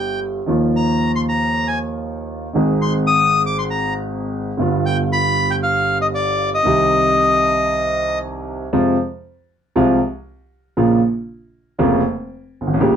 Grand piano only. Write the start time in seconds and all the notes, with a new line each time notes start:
Already playing: G1 G2 D3 G3 B3 G4
0.46 D#2 D#3 F3 A#3 F4
2.53 G#1 G#2 D#3 G#3 C4
2.57 G#4
4.57 G1 G2 D3 G3 B3
4.61 F4
6.63 C2 C3 D#3 G3 C4
6.67 G4
8.73 F2 C3 F3 G#3 F4
9.76 C2 C3 F3 G#3 F4
10.77 A#1 A#2 C#3 F3 A#3 F4
11.78 F1 F2 C#3 F3 A#3 F4
12.61 G1
12.67 G#1
12.74 A1
12.80 A#1 A#2 C#3 G3 A#3 G4